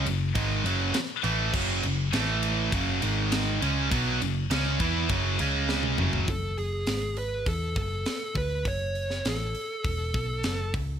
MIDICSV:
0, 0, Header, 1, 8, 480
1, 0, Start_track
1, 0, Key_signature, 3, "minor"
1, 0, Tempo, 593472
1, 1251, Time_signature, 4, 2, 24, 8
1, 5083, Key_signature, 3, "minor"
1, 8893, End_track
2, 0, Start_track
2, 0, Title_t, "Lead electric guitar"
2, 0, Program_c, 0, 29
2, 5092, Note_on_c, 0, 69, 79
2, 5323, Note_off_c, 0, 69, 0
2, 5327, Note_on_c, 0, 68, 79
2, 5806, Note_off_c, 0, 68, 0
2, 5809, Note_on_c, 0, 71, 77
2, 6051, Note_off_c, 0, 71, 0
2, 6054, Note_on_c, 0, 69, 74
2, 6279, Note_off_c, 0, 69, 0
2, 6288, Note_on_c, 0, 69, 87
2, 6770, Note_off_c, 0, 69, 0
2, 6773, Note_on_c, 0, 71, 89
2, 7016, Note_on_c, 0, 73, 102
2, 7017, Note_off_c, 0, 71, 0
2, 7507, Note_off_c, 0, 73, 0
2, 7509, Note_on_c, 0, 69, 86
2, 8670, Note_off_c, 0, 69, 0
2, 8893, End_track
3, 0, Start_track
3, 0, Title_t, "Distorted electric guitar"
3, 0, Program_c, 1, 30
3, 60, Note_on_c, 1, 42, 67
3, 63, Note_on_c, 1, 49, 74
3, 249, Note_off_c, 1, 42, 0
3, 250, Note_off_c, 1, 49, 0
3, 291, Note_on_c, 1, 44, 94
3, 297, Note_on_c, 1, 51, 98
3, 298, Note_on_c, 1, 56, 91
3, 525, Note_off_c, 1, 44, 0
3, 528, Note_off_c, 1, 51, 0
3, 528, Note_off_c, 1, 56, 0
3, 530, Note_on_c, 1, 42, 96
3, 535, Note_on_c, 1, 49, 98
3, 545, Note_on_c, 1, 54, 105
3, 764, Note_off_c, 1, 42, 0
3, 766, Note_off_c, 1, 49, 0
3, 771, Note_off_c, 1, 54, 0
3, 1008, Note_on_c, 1, 45, 104
3, 1011, Note_on_c, 1, 52, 99
3, 1021, Note_on_c, 1, 57, 107
3, 1242, Note_off_c, 1, 45, 0
3, 1243, Note_on_c, 1, 42, 90
3, 1244, Note_off_c, 1, 52, 0
3, 1247, Note_on_c, 1, 49, 112
3, 1249, Note_off_c, 1, 57, 0
3, 1249, Note_on_c, 1, 54, 111
3, 1479, Note_off_c, 1, 42, 0
3, 1481, Note_off_c, 1, 49, 0
3, 1482, Note_off_c, 1, 54, 0
3, 1492, Note_on_c, 1, 49, 71
3, 1494, Note_on_c, 1, 42, 69
3, 1683, Note_off_c, 1, 49, 0
3, 1684, Note_off_c, 1, 42, 0
3, 1725, Note_on_c, 1, 45, 93
3, 1733, Note_on_c, 1, 52, 103
3, 1739, Note_on_c, 1, 57, 112
3, 2199, Note_off_c, 1, 45, 0
3, 2202, Note_on_c, 1, 42, 97
3, 2203, Note_off_c, 1, 52, 0
3, 2206, Note_off_c, 1, 57, 0
3, 2211, Note_on_c, 1, 49, 100
3, 2218, Note_on_c, 1, 54, 110
3, 2446, Note_off_c, 1, 42, 0
3, 2446, Note_on_c, 1, 44, 107
3, 2450, Note_off_c, 1, 49, 0
3, 2450, Note_on_c, 1, 51, 91
3, 2457, Note_off_c, 1, 54, 0
3, 2457, Note_on_c, 1, 56, 101
3, 2918, Note_off_c, 1, 56, 0
3, 2919, Note_off_c, 1, 44, 0
3, 2919, Note_off_c, 1, 51, 0
3, 2922, Note_on_c, 1, 49, 93
3, 2927, Note_on_c, 1, 56, 105
3, 2934, Note_on_c, 1, 61, 104
3, 3152, Note_off_c, 1, 49, 0
3, 3156, Note_on_c, 1, 47, 106
3, 3157, Note_off_c, 1, 56, 0
3, 3161, Note_off_c, 1, 61, 0
3, 3161, Note_on_c, 1, 54, 103
3, 3165, Note_on_c, 1, 59, 111
3, 3393, Note_off_c, 1, 47, 0
3, 3396, Note_off_c, 1, 54, 0
3, 3398, Note_off_c, 1, 59, 0
3, 3411, Note_on_c, 1, 42, 65
3, 3414, Note_on_c, 1, 49, 72
3, 3600, Note_off_c, 1, 42, 0
3, 3601, Note_off_c, 1, 49, 0
3, 3653, Note_on_c, 1, 49, 85
3, 3662, Note_on_c, 1, 56, 93
3, 3665, Note_on_c, 1, 61, 106
3, 3881, Note_off_c, 1, 49, 0
3, 3886, Note_off_c, 1, 56, 0
3, 3887, Note_off_c, 1, 61, 0
3, 3887, Note_on_c, 1, 52, 77
3, 3897, Note_on_c, 1, 59, 91
3, 3899, Note_on_c, 1, 64, 100
3, 4118, Note_off_c, 1, 52, 0
3, 4123, Note_off_c, 1, 59, 0
3, 4124, Note_off_c, 1, 64, 0
3, 4125, Note_on_c, 1, 42, 90
3, 4131, Note_on_c, 1, 49, 86
3, 4134, Note_on_c, 1, 54, 104
3, 4353, Note_off_c, 1, 49, 0
3, 4357, Note_off_c, 1, 42, 0
3, 4362, Note_off_c, 1, 54, 0
3, 4363, Note_on_c, 1, 49, 84
3, 4371, Note_on_c, 1, 56, 97
3, 4376, Note_on_c, 1, 61, 101
3, 4836, Note_off_c, 1, 49, 0
3, 4840, Note_off_c, 1, 56, 0
3, 4842, Note_off_c, 1, 61, 0
3, 4844, Note_on_c, 1, 42, 99
3, 4856, Note_on_c, 1, 49, 91
3, 4857, Note_on_c, 1, 54, 110
3, 5077, Note_off_c, 1, 42, 0
3, 5082, Note_off_c, 1, 49, 0
3, 5083, Note_off_c, 1, 54, 0
3, 8893, End_track
4, 0, Start_track
4, 0, Title_t, "Picked electric bass"
4, 0, Program_c, 2, 34
4, 45, Note_on_c, 2, 30, 82
4, 272, Note_off_c, 2, 30, 0
4, 286, Note_on_c, 2, 32, 96
4, 513, Note_off_c, 2, 32, 0
4, 518, Note_on_c, 2, 30, 94
4, 748, Note_off_c, 2, 30, 0
4, 1004, Note_on_c, 2, 33, 91
4, 1230, Note_off_c, 2, 33, 0
4, 1244, Note_on_c, 2, 30, 93
4, 1470, Note_off_c, 2, 30, 0
4, 1489, Note_on_c, 2, 30, 80
4, 1712, Note_off_c, 2, 30, 0
4, 1727, Note_on_c, 2, 33, 88
4, 2175, Note_off_c, 2, 33, 0
4, 2203, Note_on_c, 2, 30, 105
4, 2428, Note_off_c, 2, 30, 0
4, 2450, Note_on_c, 2, 32, 93
4, 2895, Note_off_c, 2, 32, 0
4, 2931, Note_on_c, 2, 37, 92
4, 3152, Note_off_c, 2, 37, 0
4, 3163, Note_on_c, 2, 35, 88
4, 3387, Note_off_c, 2, 35, 0
4, 3409, Note_on_c, 2, 30, 77
4, 3630, Note_off_c, 2, 30, 0
4, 3646, Note_on_c, 2, 37, 88
4, 3868, Note_off_c, 2, 37, 0
4, 3884, Note_on_c, 2, 40, 91
4, 4107, Note_off_c, 2, 40, 0
4, 4121, Note_on_c, 2, 30, 91
4, 4345, Note_off_c, 2, 30, 0
4, 4368, Note_on_c, 2, 37, 81
4, 4813, Note_off_c, 2, 37, 0
4, 4849, Note_on_c, 2, 30, 94
4, 5070, Note_off_c, 2, 30, 0
4, 5079, Note_on_c, 2, 30, 89
4, 5304, Note_off_c, 2, 30, 0
4, 5325, Note_on_c, 2, 30, 66
4, 5547, Note_off_c, 2, 30, 0
4, 5566, Note_on_c, 2, 32, 85
4, 6013, Note_off_c, 2, 32, 0
4, 6039, Note_on_c, 2, 40, 89
4, 6265, Note_off_c, 2, 40, 0
4, 6275, Note_on_c, 2, 30, 79
4, 6503, Note_off_c, 2, 30, 0
4, 6752, Note_on_c, 2, 38, 91
4, 6982, Note_off_c, 2, 38, 0
4, 6996, Note_on_c, 2, 30, 83
4, 7450, Note_off_c, 2, 30, 0
4, 7486, Note_on_c, 2, 33, 81
4, 7710, Note_off_c, 2, 33, 0
4, 7964, Note_on_c, 2, 28, 92
4, 8190, Note_off_c, 2, 28, 0
4, 8199, Note_on_c, 2, 35, 76
4, 8428, Note_off_c, 2, 35, 0
4, 8449, Note_on_c, 2, 30, 75
4, 8674, Note_off_c, 2, 30, 0
4, 8682, Note_on_c, 2, 37, 84
4, 8893, Note_off_c, 2, 37, 0
4, 8893, End_track
5, 0, Start_track
5, 0, Title_t, "Muted distorted electric guitar strokes"
5, 774, Note_on_c, 9, 29, 59
5, 854, Note_off_c, 9, 29, 0
5, 8893, End_track
6, 0, Start_track
6, 0, Title_t, "Muted overdriven electric guitar strokes"
6, 758, Note_on_c, 9, 29, 53
6, 839, Note_off_c, 9, 29, 0
6, 8893, End_track
7, 0, Start_track
7, 0, Title_t, "Muted picked electric bass strokes"
7, 769, Note_on_c, 9, 29, 39
7, 850, Note_off_c, 9, 29, 0
7, 7727, Note_on_c, 9, 29, 39
7, 7808, Note_off_c, 9, 29, 0
7, 8893, End_track
8, 0, Start_track
8, 0, Title_t, "Drums"
8, 51, Note_on_c, 9, 51, 73
8, 132, Note_off_c, 9, 51, 0
8, 286, Note_on_c, 9, 36, 100
8, 286, Note_on_c, 9, 51, 84
8, 367, Note_off_c, 9, 36, 0
8, 367, Note_off_c, 9, 51, 0
8, 531, Note_on_c, 9, 51, 76
8, 611, Note_off_c, 9, 51, 0
8, 760, Note_on_c, 9, 51, 93
8, 766, Note_on_c, 9, 38, 105
8, 841, Note_off_c, 9, 51, 0
8, 847, Note_off_c, 9, 38, 0
8, 1000, Note_on_c, 9, 51, 68
8, 1081, Note_off_c, 9, 51, 0
8, 1241, Note_on_c, 9, 49, 95
8, 1243, Note_on_c, 9, 36, 113
8, 1322, Note_off_c, 9, 49, 0
8, 1324, Note_off_c, 9, 36, 0
8, 1483, Note_on_c, 9, 51, 63
8, 1563, Note_off_c, 9, 51, 0
8, 1724, Note_on_c, 9, 51, 86
8, 1730, Note_on_c, 9, 38, 110
8, 1805, Note_off_c, 9, 51, 0
8, 1810, Note_off_c, 9, 38, 0
8, 1963, Note_on_c, 9, 51, 78
8, 2044, Note_off_c, 9, 51, 0
8, 2203, Note_on_c, 9, 36, 99
8, 2204, Note_on_c, 9, 51, 101
8, 2284, Note_off_c, 9, 36, 0
8, 2285, Note_off_c, 9, 51, 0
8, 2442, Note_on_c, 9, 51, 81
8, 2523, Note_off_c, 9, 51, 0
8, 2683, Note_on_c, 9, 51, 97
8, 2689, Note_on_c, 9, 38, 109
8, 2764, Note_off_c, 9, 51, 0
8, 2770, Note_off_c, 9, 38, 0
8, 2929, Note_on_c, 9, 51, 74
8, 3010, Note_off_c, 9, 51, 0
8, 3167, Note_on_c, 9, 36, 108
8, 3168, Note_on_c, 9, 51, 98
8, 3247, Note_off_c, 9, 36, 0
8, 3249, Note_off_c, 9, 51, 0
8, 3410, Note_on_c, 9, 51, 65
8, 3491, Note_off_c, 9, 51, 0
8, 3646, Note_on_c, 9, 51, 98
8, 3651, Note_on_c, 9, 38, 104
8, 3727, Note_off_c, 9, 51, 0
8, 3732, Note_off_c, 9, 38, 0
8, 3880, Note_on_c, 9, 51, 77
8, 3883, Note_on_c, 9, 36, 80
8, 3961, Note_off_c, 9, 51, 0
8, 3964, Note_off_c, 9, 36, 0
8, 4119, Note_on_c, 9, 51, 90
8, 4121, Note_on_c, 9, 36, 98
8, 4200, Note_off_c, 9, 51, 0
8, 4202, Note_off_c, 9, 36, 0
8, 4359, Note_on_c, 9, 51, 74
8, 4440, Note_off_c, 9, 51, 0
8, 4601, Note_on_c, 9, 38, 59
8, 4682, Note_off_c, 9, 38, 0
8, 4716, Note_on_c, 9, 48, 59
8, 4797, Note_off_c, 9, 48, 0
8, 4839, Note_on_c, 9, 45, 99
8, 4919, Note_off_c, 9, 45, 0
8, 4959, Note_on_c, 9, 43, 98
8, 5040, Note_off_c, 9, 43, 0
8, 5078, Note_on_c, 9, 46, 66
8, 5079, Note_on_c, 9, 36, 96
8, 5159, Note_off_c, 9, 46, 0
8, 5160, Note_off_c, 9, 36, 0
8, 5320, Note_on_c, 9, 46, 47
8, 5401, Note_off_c, 9, 46, 0
8, 5553, Note_on_c, 9, 46, 70
8, 5559, Note_on_c, 9, 38, 103
8, 5634, Note_off_c, 9, 46, 0
8, 5640, Note_off_c, 9, 38, 0
8, 5796, Note_on_c, 9, 46, 59
8, 5877, Note_off_c, 9, 46, 0
8, 6037, Note_on_c, 9, 36, 89
8, 6037, Note_on_c, 9, 46, 68
8, 6117, Note_off_c, 9, 36, 0
8, 6118, Note_off_c, 9, 46, 0
8, 6276, Note_on_c, 9, 46, 59
8, 6277, Note_on_c, 9, 36, 112
8, 6357, Note_off_c, 9, 46, 0
8, 6358, Note_off_c, 9, 36, 0
8, 6516, Note_on_c, 9, 46, 65
8, 6522, Note_on_c, 9, 38, 98
8, 6597, Note_off_c, 9, 46, 0
8, 6603, Note_off_c, 9, 38, 0
8, 6756, Note_on_c, 9, 46, 57
8, 6757, Note_on_c, 9, 36, 101
8, 6837, Note_off_c, 9, 46, 0
8, 6838, Note_off_c, 9, 36, 0
8, 6997, Note_on_c, 9, 46, 65
8, 6998, Note_on_c, 9, 36, 95
8, 7078, Note_off_c, 9, 46, 0
8, 7079, Note_off_c, 9, 36, 0
8, 7240, Note_on_c, 9, 46, 49
8, 7321, Note_off_c, 9, 46, 0
8, 7363, Note_on_c, 9, 38, 33
8, 7444, Note_off_c, 9, 38, 0
8, 7481, Note_on_c, 9, 46, 69
8, 7487, Note_on_c, 9, 38, 107
8, 7562, Note_off_c, 9, 46, 0
8, 7568, Note_off_c, 9, 38, 0
8, 7722, Note_on_c, 9, 46, 50
8, 7803, Note_off_c, 9, 46, 0
8, 7962, Note_on_c, 9, 46, 68
8, 7963, Note_on_c, 9, 36, 99
8, 8043, Note_off_c, 9, 46, 0
8, 8044, Note_off_c, 9, 36, 0
8, 8203, Note_on_c, 9, 36, 103
8, 8206, Note_on_c, 9, 46, 57
8, 8284, Note_off_c, 9, 36, 0
8, 8286, Note_off_c, 9, 46, 0
8, 8439, Note_on_c, 9, 46, 64
8, 8445, Note_on_c, 9, 38, 102
8, 8520, Note_off_c, 9, 46, 0
8, 8526, Note_off_c, 9, 38, 0
8, 8686, Note_on_c, 9, 36, 99
8, 8687, Note_on_c, 9, 46, 51
8, 8767, Note_off_c, 9, 36, 0
8, 8767, Note_off_c, 9, 46, 0
8, 8893, End_track
0, 0, End_of_file